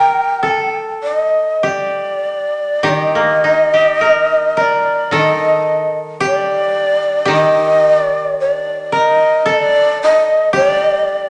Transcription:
Already playing: G4 A#4 G5
0.43 A4
1.03 D5
1.16 D#5
1.63 G4
1.67 D5
2.83 D#3 G4
2.88 D5
2.99 D#5
3.15 A#3
3.44 D#4
3.74 G4
4.01 A#4
4.57 A#4 D5
5.11 D#3 A4
5.17 D#5
6.20 G4
6.27 D5
7.25 D#3 G4
7.33 D#5
7.92 D5
8.40 D5
8.92 A#4 D#5
9.46 A4 D5
10.03 D#5
10.53 G4 D5

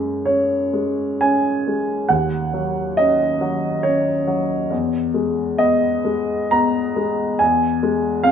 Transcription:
Already playing: F#2 G#3
0.26 C#4 C#5
0.73 G#3
1.21 C#4 G#5
1.67 G#3
2.09 D#2 F#5
2.54 F#3
2.97 C#4 D#5
3.41 F#3
3.83 C#4 C#5
4.28 F#3
4.70 E2
5.14 G#3
5.58 B3 D#5
6.05 G#3
6.51 B3 A#5
6.96 G#3
7.39 E2 G#5
7.83 G#3
8.23 C4 F5

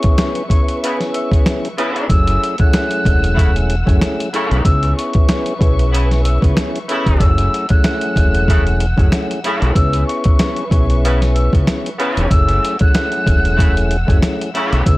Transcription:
Already playing: B3 C#4 E4 G#4 B4 E5 C#6
0.03 kick, closed hi-hat
0.18 snare, closed hi-hat
0.35 closed hi-hat
0.48 B3 C#4 E4 G#4 C#6, kick, closed hi-hat
0.68 closed hi-hat
0.82 C#3 B3 E4, closed hi-hat
1.00 snare, closed hi-hat
1.13 E6, closed hi-hat
1.32 kick, closed hi-hat
1.46 snare, closed hi-hat
1.65 closed hi-hat
1.77 C#3 B3 C#4 E4 G#4, closed hi-hat
1.96 closed hi-hat
2.08 F#1 F#2 A3 C#4 E4 G#4 F#5 E6, kick, closed hi-hat
2.27 closed hi-hat
2.43 closed hi-hat
2.58 F#2 A3 C#4 E4 G#4 F#6, kick, closed hi-hat
2.73 snare, closed hi-hat
2.91 closed hi-hat
3.05 E1, kick, closed hi-hat
3.24 closed hi-hat
3.35 C#3 A3 E4, kick
3.39 closed hi-hat
3.56 closed hi-hat
3.70 closed hi-hat
3.85 F#1 F#2 A3 C#4 E4 G#4, kick, closed hi-hat
4.01 snare, closed hi-hat
4.20 closed hi-hat
4.32 F#2 C#3 A3 C#4 E4 G#4, closed hi-hat
4.51 B1, closed hi-hat
4.63 C#2 B3 C#4 E4 G#4 B4 E5 C#6 E6, kick, closed hi-hat
4.83 closed hi-hat
4.97 C#6, closed hi-hat
5.13 kick, closed hi-hat
5.29 snare, closed hi-hat
5.46 closed hi-hat
5.58 B1 B3 C#4 E4 G#4 C#6, kick, closed hi-hat
5.79 closed hi-hat
5.92 C#3 B3 E4, closed hi-hat
6.11 snare, closed hi-hat
6.24 E6, closed hi-hat
6.42 C#2, kick, closed hi-hat
6.57 snare, closed hi-hat
6.76 closed hi-hat
6.88 C#3 A3 B3 C#4 E4 G#4, closed hi-hat
7.06 E1, kick, closed hi-hat
7.20 F#1 F#2 A3 C#4 E4 G#4 F#5 E6, kick, closed hi-hat
7.38 closed hi-hat
7.54 closed hi-hat
7.69 F#2 A3 C#4 E4 G#4 F#6, kick, closed hi-hat
7.84 snare, closed hi-hat
8.01 closed hi-hat
8.16 E1, kick, closed hi-hat
8.35 closed hi-hat
8.48 C#3 A3 E4, kick, closed hi-hat
8.67 closed hi-hat
8.80 closed hi-hat
8.96 F#1 F#2 A3 C#4 E4 G#4, kick, closed hi-hat
9.12 snare, closed hi-hat
9.31 closed hi-hat
9.43 F#2 C#3 A3 C#4 E4 G#4, closed hi-hat
9.62 B1, closed hi-hat
9.74 C#2 B3 C#4 E4 G#4 B4 E5 C#6 E6, kick, closed hi-hat
9.93 closed hi-hat
10.07 C#6, closed hi-hat
10.24 kick, closed hi-hat
10.39 snare, closed hi-hat
10.56 closed hi-hat
10.69 B1 B3 C#4 E4 G#4 C#6, kick, closed hi-hat
10.90 closed hi-hat
11.04 C#3 B3 E4, closed hi-hat
11.22 snare, closed hi-hat
11.35 E6, closed hi-hat
11.53 C#2, kick, closed hi-hat
11.67 snare, closed hi-hat
11.86 closed hi-hat
11.99 C#3 B3 C#4 E4 G#4, closed hi-hat
12.17 E1, closed hi-hat
12.29 F#1 F#2 A3 C#4 E4 G#4 F#5 E6, kick, closed hi-hat
12.49 closed hi-hat
12.65 closed hi-hat
12.79 F#2 A3 C#4 E4 G#4 F#6, kick, closed hi-hat
12.95 snare, closed hi-hat
13.12 closed hi-hat
13.27 E1, kick, closed hi-hat
13.45 closed hi-hat
13.56 C#3 A3 E4, kick
13.60 closed hi-hat
13.77 closed hi-hat
13.91 closed hi-hat
14.06 F#1 F#2 A3 C#4 E4 G#4, kick, closed hi-hat
14.23 snare, closed hi-hat
14.41 closed hi-hat
14.54 F#2 C#3 A3 C#4 E4 G#4, closed hi-hat
14.72 B1, closed hi-hat
14.85 C#2 B3 C#4 E4 G#4 B4 E5 C#6 E6, kick, closed hi-hat

